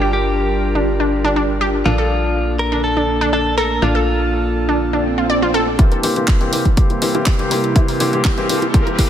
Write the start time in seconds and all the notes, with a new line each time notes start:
Already playing: G1 F3 G3 A#3 D4 F4 G4 A#4
0.02 G4
0.13 G4
0.75 D4
1.00 D4
1.25 D4
1.36 D4
1.61 G4
1.85 A#1 F3 A#3 D4 F4 A4
1.98 A4
2.59 A#4
2.72 D4
2.84 A4
2.97 D4
3.21 D4
3.33 D4 A4
3.58 A4 A#4
3.82 A#1 D4 F4
3.95 A4
4.69 D4
4.81 swell
4.93 D4
5.18 F4
5.30 D5
5.42 F4
5.54 A4
5.79 C3 E3 G3 A#3 C4 E4 G4, kick, closed hi-hat, riser
5.92 A#4, closed hi-hat
6.03 E3 A#3 C4 G4, open hi-hat
6.16 E3 A#3 C4 G4, closed hi-hat
6.28 kick, clap, closed hi-hat
6.41 E3 A#3 C4 G4, closed hi-hat
6.53 E3 A#3 C4 G4, open hi-hat
6.65 E4, kick, closed hi-hat
6.77 E3 A#3 C4 G4, kick, closed hi-hat
6.90 E4, closed hi-hat
7.02 E3 A#3 C4 G4, open hi-hat
7.15 E3 A#3 C4 E4 G4, closed hi-hat
7.26 E4, kick, clap, closed hi-hat
7.39 E3 A#3 C4 G4, closed hi-hat
7.51 E3 A#3 C4 G4 A#4, open hi-hat
7.64 closed hi-hat
7.76 E3 A#3 C4 E4 G4, kick, closed hi-hat
7.88 A#4, open hi-hat
8.00 E3 A#3 C4 G4, open hi-hat
8.13 E3 A#3 C4 G4, closed hi-hat
8.24 kick, clap, closed hi-hat
8.38 E3 A#3 C4 G4, closed hi-hat
8.49 E3 A#3 C4 G4, open hi-hat
8.62 E4, closed hi-hat
8.74 E3 A#3 C4 G4, kick, closed hi-hat
8.87 E4, closed hi-hat
8.99 E3 A#3 C4 G4, kick, open hi-hat